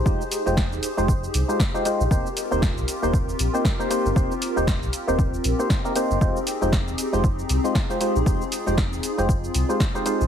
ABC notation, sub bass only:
X:1
M:4/4
L:1/16
Q:"Swing 16ths" 1/4=117
K:Fm
V:1 name="Sub bass" clef=bass
F,,, z2 F,,,2 E,,, z F,,,2 z C,, z4 B,,, | E,,, z2 E,,,2 C,, z E,,,2 z B,,, z4 G,,, | E,,, z2 E,,,2 C,, z E,,,2 z B,,, z4 G,,, | F,,, z2 F,,,2 E,,, z F,,,2 z C,, z4 B,,, |
F,,, z2 F,,,2 E,,, z F,,,2 z C,, z4 B,,, |]